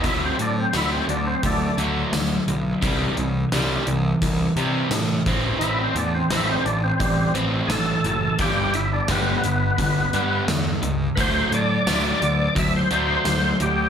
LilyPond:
<<
  \new Staff \with { instrumentName = "Tonewheel organ" } { \time 4/4 \key d \mixolydian \tempo 4 = 86 <dis' e'>16 c'16 d'16 c'16 e'16 c'16 d'16 c'16 <a d'>8 r4. | r1 | <dis' e'>16 c'16 d'16 c'16 e'16 c'16 d'16 c'16 <g c'>8 r8 <gis' a'>4 | g'8 e'16 d'16 b2 r4 |
<b' c''>8 d''4. e''16 c''4~ c''16 g'8 | }
  \new Staff \with { instrumentName = "Overdriven electric guitar" } { \clef bass \time 4/4 \key d \mixolydian <d fis a>8 <d fis>8 <d fis a>8 <d fis>8 <d fis>8 <d fis a>8 <d fis>8 <d fis>8 | <c e g>8 <c e>8 <c e g>8 <c e>8 <c e>8 <c e g>8 <c e>8 <a, e c'>8 | <a, e c'>8 <a, e>8 <a, e c'>8 <a, e>8 <a, e>8 <a, e c'>8 <a, e>8 <a, e>8 | <g, d g>8 <g, d>8 <g, d g>8 <g, d>8 <g, d>8 <g, d g>8 <g, d>8 <g, d>8 |
<d fis a>8 <d fis>8 <d fis a>8 <d fis>8 <d fis>8 <d fis a>8 <d fis>8 <d fis>8 | }
  \new Staff \with { instrumentName = "Picked electric bass" } { \clef bass \time 4/4 \key d \mixolydian d,8 a,8 d,8 d,8 d,8 d,8 d,8 b,,8 | c,8 c,8 c,8 c,8 c,8 c8 a,8 a,,8 | a,,8 e,8 a,,8 a,,8 a,,8 a,,8 a,,8 fis,,8 | g,,8 g,,8 g,,8 g,,8 g,,8 g,8 e,8 cis,8 |
d,8 a,8 d,8 d,8 d,8 d,8 d,8 d,8 | }
  \new DrumStaff \with { instrumentName = "Drums" } \drummode { \time 4/4 <hh bd>8 hh8 <hh sn tamb>8 hh8 <hh bd>8 hh8 <hh sn tamb>8 hh8 | <hh bd>8 hh8 <hh sn tamb>8 hh8 <hh bd>8 hh8 <hh sn tamb>8 <hh bd>8 | hh8 hh8 <hh sn tamb>8 hh8 <hh bd>8 hh8 <hh sn tamb>8 hh8 | <hh bd>8 <hh sn>8 <hh bd sn tamb>8 hh8 <hh bd>8 hh8 <hh sn tamb>8 hh8 |
<hh bd>8 hh8 <hh sn tamb>8 hh8 <hh bd>8 hh8 <hh sn tamb>8 hh8 | }
>>